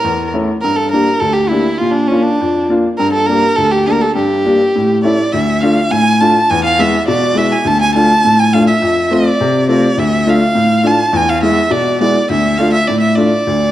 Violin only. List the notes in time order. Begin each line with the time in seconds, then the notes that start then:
Already playing: A#4
0.61 A#4
0.76 A4
0.91 A#4
1.20 A4
1.33 G4
1.48 E4
1.78 F4
1.91 D4
2.08 C#4
2.23 D4
2.97 A#4
3.12 A4
3.26 A#4
3.56 A4
3.71 G4
3.86 A#4
4.01 A4
4.16 G4
5.04 D5
5.33 E5
5.61 F5
5.91 G#5
6.21 A5
6.50 G#5
6.64 F5
6.79 E5
7.08 D5
7.37 E5
7.52 G#5
7.67 A5
7.82 G#5
7.95 A5
8.40 G#5
8.54 F5
8.67 E5
9.13 D5
9.69 D5
9.99 E5
10.30 F5
10.87 A5
11.16 G#5
11.29 F5
11.43 E5
11.72 D5
12.01 D5
12.31 E5
12.58 F5
12.73 E5
12.88 D5
13.00 E5
13.16 D5